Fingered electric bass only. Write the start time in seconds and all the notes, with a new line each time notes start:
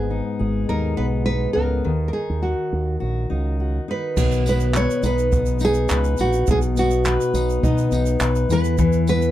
Already playing: G#1
0.40 G#1
0.70 D#2
0.99 B1
1.56 C#2
1.86 D#2
2.30 D#2
2.73 D#2
3.02 A#1
3.31 C#2
4.17 B1
5.03 B1
5.91 C#2
6.19 A#1
6.48 B1
7.34 B1
7.63 B2
7.91 B1
8.21 B1
8.49 E2